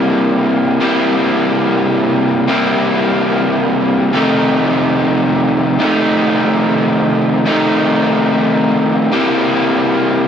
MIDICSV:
0, 0, Header, 1, 2, 480
1, 0, Start_track
1, 0, Tempo, 500000
1, 9868, End_track
2, 0, Start_track
2, 0, Title_t, "Overdriven electric guitar"
2, 0, Program_c, 0, 29
2, 0, Note_on_c, 0, 48, 90
2, 0, Note_on_c, 0, 55, 95
2, 0, Note_on_c, 0, 58, 94
2, 0, Note_on_c, 0, 64, 95
2, 766, Note_off_c, 0, 48, 0
2, 770, Note_on_c, 0, 48, 92
2, 775, Note_off_c, 0, 55, 0
2, 778, Note_on_c, 0, 55, 105
2, 783, Note_off_c, 0, 58, 0
2, 787, Note_on_c, 0, 58, 97
2, 790, Note_off_c, 0, 64, 0
2, 794, Note_on_c, 0, 64, 102
2, 2362, Note_off_c, 0, 48, 0
2, 2366, Note_off_c, 0, 55, 0
2, 2370, Note_off_c, 0, 58, 0
2, 2374, Note_off_c, 0, 64, 0
2, 2378, Note_on_c, 0, 48, 91
2, 2384, Note_on_c, 0, 55, 98
2, 2392, Note_on_c, 0, 58, 90
2, 2397, Note_on_c, 0, 64, 94
2, 3957, Note_off_c, 0, 48, 0
2, 3965, Note_on_c, 0, 41, 80
2, 3966, Note_off_c, 0, 55, 0
2, 3968, Note_on_c, 0, 48, 100
2, 3970, Note_off_c, 0, 58, 0
2, 3973, Note_off_c, 0, 64, 0
2, 3977, Note_on_c, 0, 51, 91
2, 3984, Note_on_c, 0, 57, 95
2, 3988, Note_on_c, 0, 63, 98
2, 5554, Note_off_c, 0, 41, 0
2, 5556, Note_off_c, 0, 48, 0
2, 5558, Note_on_c, 0, 41, 82
2, 5561, Note_off_c, 0, 51, 0
2, 5566, Note_on_c, 0, 48, 90
2, 5570, Note_on_c, 0, 51, 93
2, 5580, Note_off_c, 0, 57, 0
2, 5582, Note_off_c, 0, 63, 0
2, 5584, Note_on_c, 0, 57, 106
2, 5586, Note_on_c, 0, 63, 94
2, 7143, Note_off_c, 0, 41, 0
2, 7149, Note_off_c, 0, 48, 0
2, 7155, Note_off_c, 0, 51, 0
2, 7155, Note_on_c, 0, 41, 89
2, 7160, Note_on_c, 0, 48, 89
2, 7161, Note_off_c, 0, 57, 0
2, 7162, Note_off_c, 0, 63, 0
2, 7167, Note_on_c, 0, 51, 94
2, 7174, Note_on_c, 0, 57, 101
2, 7174, Note_on_c, 0, 63, 106
2, 8740, Note_off_c, 0, 48, 0
2, 8744, Note_off_c, 0, 41, 0
2, 8750, Note_off_c, 0, 51, 0
2, 8752, Note_on_c, 0, 48, 92
2, 8753, Note_off_c, 0, 57, 0
2, 8753, Note_off_c, 0, 63, 0
2, 8759, Note_on_c, 0, 55, 86
2, 8764, Note_on_c, 0, 58, 103
2, 8772, Note_on_c, 0, 64, 92
2, 9868, Note_off_c, 0, 48, 0
2, 9868, Note_off_c, 0, 55, 0
2, 9868, Note_off_c, 0, 58, 0
2, 9868, Note_off_c, 0, 64, 0
2, 9868, End_track
0, 0, End_of_file